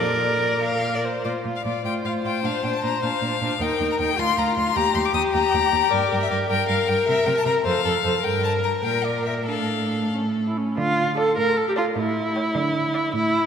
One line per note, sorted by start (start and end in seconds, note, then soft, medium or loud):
0.00 1.03 A#2 soft
0.00 1.03 A#4 medium
0.00 0.57 D5 soft
0.00 0.92 D5 medium
0.62 0.97 F5 medium
0.95 1.06 D5 soft
1.05 1.26 C5 soft
1.25 1.33 A#2 soft
1.25 1.44 F4 soft
1.25 1.33 D5 soft
1.44 1.52 A#2 soft
1.44 1.64 F4 soft
1.56 1.64 F5 soft
1.64 1.72 A#2 soft
1.64 1.84 F4 soft
1.64 1.84 D5 soft
1.84 1.92 A2 soft
1.84 2.04 F4 soft
1.84 3.57 C5 medium
1.84 1.93 G5 medium
2.04 2.12 A2 soft
2.04 2.23 F4 soft
2.04 2.13 F5 soft
2.23 2.32 A2 soft
2.23 2.43 F4 soft
2.23 2.47 G5 medium
2.43 2.51 A#2 soft
2.43 2.63 D4 soft
2.43 2.64 F5 medium
2.63 2.71 A#2 soft
2.63 2.82 D4 soft
2.63 2.74 G5 medium
2.75 2.83 A5 medium
2.82 2.91 A#2 soft
2.82 3.02 D4 soft
2.82 3.02 A#5 medium
3.02 3.10 A#2 soft
3.02 3.21 D4 soft
3.02 3.63 F5 medium
3.21 3.29 A#2 soft
3.21 3.40 D4 soft
3.41 3.49 A#2 soft
3.41 3.59 D4 soft
3.60 3.68 D#2 soft
3.60 3.79 D#4 soft
3.60 4.20 A#4 medium
3.60 3.90 G5 medium
3.80 3.88 D#2 soft
3.80 3.99 D#4 soft
3.92 3.95 A#5 medium
3.99 4.07 D#2 medium
3.99 4.18 D#4 soft
3.99 4.21 G5 medium
4.18 4.26 D2 medium
4.18 4.78 F4 medium
4.18 4.37 F4 soft
4.18 4.40 C6 medium
4.37 4.45 D2 medium
4.37 4.57 F4 soft
4.37 4.56 A#5 medium
4.57 4.64 D2 medium
4.57 4.75 F4 soft
4.57 4.77 C6 medium
4.76 4.84 D#2 medium
4.76 4.94 G4 medium
4.76 6.50 G4 medium
4.76 4.96 A#5 medium
4.95 5.03 D#2 medium
4.95 5.13 G4 soft
4.95 5.07 C6 medium
5.05 5.13 D6 medium
5.14 5.22 D#2 medium
5.14 5.32 G4 medium
5.14 5.22 D#6 medium
5.33 5.42 D#2 medium
5.33 5.52 G4 soft
5.33 5.93 A#5 medium
5.52 5.61 D#2 medium
5.52 5.71 G4 soft
5.72 5.80 D#2 medium
5.72 5.90 G4 soft
5.91 5.99 G2 medium
5.91 6.10 A#4 medium
5.91 6.21 D5 medium
6.10 6.20 G2 medium
6.10 6.29 A#4 soft
6.22 6.30 E5 medium
6.30 6.38 G2 medium
6.30 6.49 A#4 soft
6.30 6.39 D5 medium
6.49 6.58 G2 medium
6.49 6.68 A#4 soft
6.49 7.63 A#4 medium
6.49 6.68 G5 medium
6.68 6.77 G2 medium
6.68 6.88 A#4 medium
6.68 6.90 F5 medium
6.88 6.96 G2 medium
6.88 7.07 A#4 medium
6.88 7.07 G5 medium
7.08 7.15 C3 medium
7.08 7.26 A#4 medium
7.08 7.28 E5 medium
7.26 7.34 C3 medium
7.26 7.45 A#4 soft
7.26 7.36 G5 medium
7.37 7.45 A5 medium
7.45 7.53 C3 soft
7.45 7.65 A#4 soft
7.45 7.54 A#5 medium
7.65 7.73 F2 medium
7.65 7.85 A4 soft
7.65 7.84 C5 medium
7.65 8.25 F5 medium
7.85 7.93 F2 medium
7.85 7.93 A4 medium
7.85 8.04 A4 soft
8.04 8.12 F2 soft
8.04 8.24 A4 soft
8.04 8.23 C5 medium
8.23 8.80 G2 medium
8.23 9.45 A#4 medium
8.23 8.80 A#4 soft
8.23 8.43 G5 medium
8.44 8.52 A5 medium
8.64 8.72 A#5 medium
8.84 9.50 A#2 soft
8.84 9.49 A#4 soft
8.84 9.06 G5 medium
9.05 9.25 D5 soft
9.26 9.34 E5 soft
9.47 10.12 A2 soft
9.47 10.13 D4 soft
9.47 10.44 A4 soft
9.47 10.11 F5 medium
10.13 10.55 A2 soft
10.13 10.22 C#4 soft
10.47 10.59 E4 soft
10.57 10.77 C#4 soft
10.77 11.25 D3 medium
10.77 11.15 F4 medium
11.17 11.36 A4 medium
11.17 11.32 D5 medium
11.17 11.32 A5 medium
11.37 11.84 A2 medium
11.37 11.58 A#4 medium
11.57 11.67 A4 medium
11.69 11.72 G4 medium
11.76 11.85 F4 medium
11.76 11.91 D5 medium
11.76 11.91 A5 medium
11.95 12.42 A2 medium
11.95 13.12 E4 medium
12.36 12.50 C#5 medium
12.36 12.50 G5 medium
12.55 13.01 D3 medium
12.94 13.09 D5 medium
12.94 13.09 F5 soft
13.13 13.46 A2 medium
13.13 13.46 E4 medium